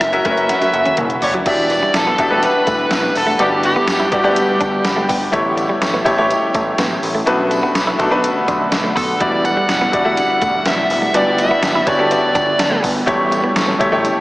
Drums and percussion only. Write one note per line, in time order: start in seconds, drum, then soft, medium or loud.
0.01 cross-stick loud
0.01 closed hi-hat medium
0.13 closed hi-hat soft
0.25 kick medium
0.25 closed hi-hat medium
0.37 closed hi-hat soft
0.49 snare medium
0.49 closed hi-hat medium
0.62 snare soft
0.62 closed hi-hat medium
0.74 closed hi-hat medium
0.85 closed hi-hat soft
0.85 high tom medium
0.97 closed hi-hat medium
0.97 mid tom medium
1.10 closed hi-hat medium
1.22 floor tom loud
1.22 open hi-hat medium
1.34 closed hi-hat soft
1.34 floor tom medium
1.46 kick loud
1.46 closed hi-hat medium
1.46 crash medium
1.46 tambourine soft
1.70 closed hi-hat medium
1.70 tambourine soft
1.94 snare loud
1.94 closed hi-hat medium
1.94 tambourine medium
2.18 kick medium
2.18 closed hi-hat medium
2.18 tambourine soft
2.43 closed hi-hat medium
2.43 tambourine soft
2.67 kick medium
2.67 closed hi-hat medium
2.67 tambourine soft
2.91 snare loud
2.91 closed hi-hat medium
2.91 tambourine medium
3.15 open hi-hat medium
3.15 tambourine soft
3.39 closed hi-hat medium
3.39 tambourine soft
3.63 closed hi-hat medium
3.63 tambourine medium
3.88 snare loud
3.88 closed hi-hat medium
3.88 tambourine medium
4.12 kick medium
4.12 closed hi-hat medium
4.36 closed hi-hat medium
4.36 tambourine soft
4.61 kick medium
4.61 closed hi-hat medium
4.61 tambourine soft
4.85 snare loud
4.85 closed hi-hat medium
4.85 tambourine medium
5.09 kick medium
5.09 open hi-hat medium
5.09 tambourine soft
5.33 kick loud
5.33 closed hi-hat medium
5.33 tambourine soft
5.58 closed hi-hat medium
5.58 tambourine soft
5.82 snare loud
5.82 closed hi-hat medium
5.82 tambourine medium
6.06 kick medium
6.06 closed hi-hat medium
6.06 tambourine soft
6.31 closed hi-hat medium
6.31 tambourine medium
6.54 kick medium
6.54 closed hi-hat medium
6.54 tambourine soft
6.78 snare loud
6.78 closed hi-hat medium
6.78 tambourine medium
7.03 open hi-hat medium
7.03 tambourine soft
7.27 closed hi-hat medium
7.27 tambourine soft
7.51 closed hi-hat medium
7.51 tambourine soft
7.75 snare loud
7.75 closed hi-hat medium
7.75 tambourine medium
8.00 kick medium
8.00 closed hi-hat medium
8.00 tambourine soft
8.24 closed hi-hat loud
8.24 tambourine soft
8.48 kick medium
8.48 closed hi-hat medium
8.48 tambourine soft
8.72 snare loud
8.72 closed hi-hat medium
8.72 tambourine medium
8.97 kick medium
8.97 open hi-hat medium
8.97 tambourine soft
9.21 kick loud
9.21 closed hi-hat medium
9.45 closed hi-hat medium
9.45 tambourine soft
9.69 snare loud
9.69 closed hi-hat medium
9.69 tambourine medium
9.93 kick medium
9.93 closed hi-hat medium
10.17 closed hi-hat medium
10.17 tambourine soft
10.41 kick medium
10.41 closed hi-hat medium
10.41 tambourine soft
10.66 snare loud
10.66 closed hi-hat medium
10.66 tambourine medium
10.90 open hi-hat medium
10.90 tambourine soft
11.14 closed hi-hat medium
11.14 tambourine soft
11.38 closed hi-hat medium
11.38 tambourine medium
11.63 snare loud
11.63 closed hi-hat medium
11.63 tambourine medium
11.87 kick medium
11.87 closed hi-hat medium
11.87 tambourine soft
12.11 closed hi-hat medium
12.11 tambourine medium
12.35 kick medium
12.35 closed hi-hat medium
12.35 tambourine soft
12.59 snare loud
12.59 closed hi-hat medium
12.59 tambourine medium
12.83 kick medium
12.83 open hi-hat medium
12.83 tambourine medium
13.07 kick loud
13.07 closed hi-hat medium
13.07 tambourine soft
13.32 closed hi-hat medium
13.32 tambourine soft
13.56 snare loud
13.56 closed hi-hat medium
13.56 tambourine medium
13.80 kick medium
13.80 closed hi-hat medium
14.05 closed hi-hat medium
14.05 tambourine soft